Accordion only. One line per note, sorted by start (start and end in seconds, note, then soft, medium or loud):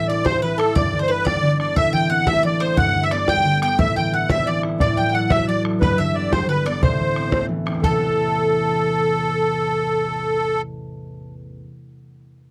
0.08 0.25 D5 loud
0.25 0.41 C5 loud
0.42 0.58 B4 medium
0.58 0.74 A4 loud
0.75 0.99 D5 loud
1.03 1.10 C5 loud
1.09 1.25 B4 medium
1.26 1.58 D5 loud
1.59 1.75 D5 medium
1.77 1.93 E5 loud
1.94 2.09 G5 loud
2.11 2.28 F#5 medium
2.27 2.43 E5 loud
2.46 2.62 D5 loud
2.61 2.77 C5 loud
2.78 3.04 F#5 loud
3.03 3.11 E5 loud
3.12 3.29 D5 medium
3.29 3.60 G5 loud
3.62 3.78 G5 loud
3.80 3.95 E5 loud
3.97 4.14 G5 loud
4.14 4.29 F#5 medium
4.31 4.48 E5 loud
4.46 4.62 D5 loud
4.80 4.97 D5 loud
4.97 5.14 G5 medium
5.13 5.31 F#5 loud
5.30 5.46 E5 loud
5.47 5.63 D5 medium
5.81 5.98 B4 loud
5.99 6.16 E5 medium
6.14 6.32 D5 medium
6.31 6.47 C5 loud
6.50 6.67 B4 medium
6.66 6.82 D5 medium
6.83 7.46 C5 medium
7.83 10.62 A4 medium